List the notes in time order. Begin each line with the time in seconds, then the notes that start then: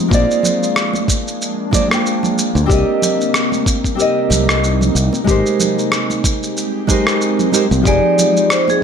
0.08 A#1 G#3 A#3 D4 F4 G#4, kick
0.13 C5 D5, shaker
0.31 shaker
0.43 low conga, shaker
0.63 shaker
0.76 cross-stick, shaker
0.94 high conga, shaker
1.08 kick, shaker
1.28 shaker
1.42 shaker
1.71 A#3 F4 G#4 C5 D5, kick, high conga, low conga, shaker
1.88 A#3 F4 G#4, cross-stick
1.92 C5 G5, shaker
2.06 shaker
2.23 low conga, shaker
2.38 shaker
2.55 D2, high conga, shaker
2.66 C2 C3 G3 C4 D#4 G4 A#4, kick
2.71 D5 D#5, shaker
3.02 low conga, shaker
3.21 shaker
3.34 cross-stick, shaker
3.52 high conga, shaker
3.66 kick, shaker
3.84 kick, shaker
3.95 C4 G4 A#4
4.00 D5 D#5, shaker
4.30 C2, high conga, low conga, shaker
4.49 cross-stick, shaker
4.64 shaker
4.81 low conga, shaker
4.95 C2, shaker
5.13 high conga, shaker
5.24 G#1 G#3 C4 D#4 G4, kick, shaker
5.29 A#4 C5
5.46 shaker
5.60 low conga, shaker
5.79 shaker
5.92 cross-stick, shaker
6.10 high conga, shaker
6.24 kick, shaker
6.43 shaker
6.57 shaker
6.87 G#3 D#4 G4 A#4 C5, kick, high conga, low conga, shaker
7.07 cross-stick, shaker
7.21 shaker
7.39 low conga, shaker
7.52 G#3 D#4 G4 A#4 C5, shaker
7.71 C2, high conga, shaker
7.82 F1 F3 G#3 C4 D#4 F4 G4, kick
7.86 D#4 G#4 D5, shaker
8.19 low conga, shaker
8.37 shaker
8.50 C5, cross-stick, shaker
8.68 G#4, muted conga, high conga, shaker